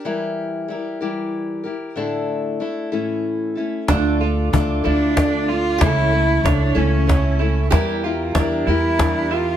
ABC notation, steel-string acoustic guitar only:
X:1
M:6/8
L:1/8
Q:3/8=63
K:Aphr
V:1 name="Steel-string acoustic guitar"
[E,G,EGB]2 [G,EGB] [E,G,EGB]2 [EGB] | [A,,D,A,DEA]2 [A,DEA] [A,,E,A,^CEA]2 [A,CEA] | [K:Dm] [D,A,DFA] [DFA] [A,DFA] [D,A,DFA] [A,DFA] [DFA] | [^C,E,A,^CEA] [A,CEA] [A,EA] [C,E,A,CEA] [A,CEA] [A,CEA] |
[E,G,EGB] [EGB] [G,EGB] [E,G,EGB] [G,EGB] [GB] |]